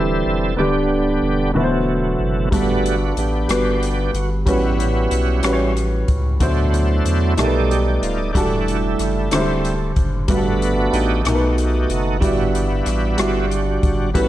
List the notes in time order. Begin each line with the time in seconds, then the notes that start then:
Already playing: D1 D3 E3 G3 C4 E4 G4 A4 D5
0.26 E1
0.57 D1 D3 G3 B3 D4 G4 D5
1.22 E1
1.54 D1 B2 D3 E3 F#3 A3 E4 F#4 B4
1.63 C5
2.20 F#1
2.51 G1 G2 G3 A3 B3 D4 F#4 A4 B4, kick, closed hi-hat
2.86 closed hi-hat
3.08 F#4
3.17 A1 B3 D4 G4, closed hi-hat
3.48 G1 G3 B3 F#4 B4, cross-stick, closed hi-hat
3.83 closed hi-hat
4.14 G1 F#4, closed hi-hat
4.46 A1 A2 G3 B3 C#4 E4 F#4 B4, kick, closed hi-hat
4.80 closed hi-hat
5.11 B1, closed hi-hat
5.43 A1 G3 C#4 F#4 B4, cross-stick, closed hi-hat
5.53 C#5
5.77 closed hi-hat
6.08 C#2, kick, closed hi-hat
6.40 D2 B2 D3 F#3 A3 D4 E4 F#4 C5, kick, closed hi-hat
6.74 closed hi-hat
7.05 E2, closed hi-hat
7.37 B1 B2 G3 A3 D#4 G4 A4 A#4 D5, cross-stick, closed hi-hat
7.46 B4
7.71 G4, closed hi-hat
7.96 G4
8.02 D1 F4, closed hi-hat
8.33 E1 E3 G3 A3 D4 E4 F#4, kick, closed hi-hat
8.37 A4
8.68 closed hi-hat
8.99 F#1, cross-stick, closed hi-hat
9.31 D1 D3 F#3 G3 C4 D4 E4 C5, cross-stick, closed hi-hat
9.38 G3
9.65 closed hi-hat
9.96 F#1, kick, closed hi-hat
10.28 G1 G2 G3 A3 B3 D4 F#4 G4 B4, kick, closed hi-hat
10.37 A4
10.62 closed hi-hat
10.93 A1 D#4 G4, closed hi-hat
11.23 B1 B2 A3 D#4 F#4, cross-stick, closed hi-hat
11.27 F#4 A#4
11.35 B4
11.58 closed hi-hat
11.90 F#1 F#4, closed hi-hat
12.20 G1 G2 G3 B3 D4 E4 F#4 D5, kick, closed hi-hat
12.55 closed hi-hat
12.86 A1, cross-stick, closed hi-hat
13.17 G1 G3 E4 F#4 D5, cross-stick, closed hi-hat
13.51 closed hi-hat
13.83 G1, kick, closed hi-hat
14.14 A1 A2 G3 B3 C#4 E4 F#4 A4 B4, kick, closed hi-hat